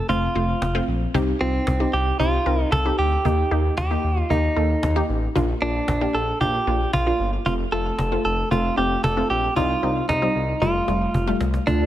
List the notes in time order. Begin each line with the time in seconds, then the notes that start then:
0.09 F1 A3 C4 F4, cajon bass
0.35 F1 A3 C4 F4
0.49 cajon slap
0.62 F1, cajon bass, cajon slap
0.75 A3 C4 F4, cajon slap
0.88 A#1, cajon slap
1.01 cajon slap
1.14 C2 C4 D#4 G4, cajon bass
1.28 cajon slap
1.41 C2 C4 D#4 F4
1.54 cajon slap
1.67 C2, cajon bass, cajon slap
1.80 C4 D#4 G4, cajon slap
1.93 C2 G4, cajon slap
2.06 cajon slap
2.20 C2 C4 D#4 F4 G4, cajon bass
2.46 C2 C4 D#4 A#4
2.59 cajon slap
2.72 C2 A4, cajon bass, cajon slap
2.85 C4 D#4 G4, cajon slap
2.99 D2 G4, cajon slap
3.12 cajon slap
3.25 D#2 A#3 D#4 G4, cajon bass
3.51 D#2 A#3 D#4 G4
3.65 cajon slap
3.77 D#2 G4, cajon bass, cajon slap
3.91 A#3 D#4 G4, cajon slap
4.04 D#2, cajon slap
4.17 F4, cajon slap
4.30 D#2 A#3 D#4 G4, cajon bass
4.43 cajon slap
4.56 D#2 A#3 D#4 A4
4.70 cajon slap
4.83 D#2, cajon bass, cajon slap
4.96 A#3 D#4 G4, cajon slap
5.09 A1, cajon slap
5.22 cajon slap
5.35 A#1 A#3 D4 F4, cajon bass
5.49 cajon slap
5.62 A#1 A#3 D4 F4
5.75 cajon slap
5.88 A#1, cajon bass, cajon slap
6.01 A#3 D4 G4, cajon slap
6.14 A#1 A4
6.27 cajon slap
6.41 A#1 A#3 D4 F4 G4, cajon bass
6.67 A#1 A#3 D4 F4, cajon slap
6.93 A#1 F4, cajon bass, cajon slap
7.06 A#3 D4 F4, cajon slap
7.20 G1, cajon slap
7.33 cajon slap
7.46 F1 A3 C4 F4, cajon bass
7.59 cajon slap
7.72 F1 A3 C4 F4 A4, cajon slap
7.86 cajon slap
7.99 F1, cajon bass, cajon slap
8.12 A3 C4 F4
8.25 F1 A4, cajon slap
8.38 cajon slap
8.51 F1 A3 C4 F4, cajon bass
8.64 cajon slap
8.77 F1 A3 C4 F4 G4, cajon slap
8.91 cajon slap
9.04 F1 A4, cajon bass, cajon slap
9.17 A3 C4 F4
9.30 A#1 G4, cajon slap
9.43 cajon slap
9.56 C2 G3 C4 D#4 F4, cajon bass
9.83 C2 G3 C4 D#4, cajon slap
9.96 cajon slap
10.09 C2 D#4, cajon bass, cajon slap
10.22 G3 C4 D#4, cajon slap
10.35 C2, cajon slap
10.62 F1 G3 A3 F4, cajon bass, cajon slap
10.88 F1 G3 A3 F4, cajon slap
11.01 cajon slap
11.14 F1, cajon bass, cajon slap
11.27 G3 A3 F4, cajon slap
11.41 C2, cajon slap
11.54 cajon slap
11.67 D2 D3 A3 D4 F4 A4, cajon bass
11.80 cajon slap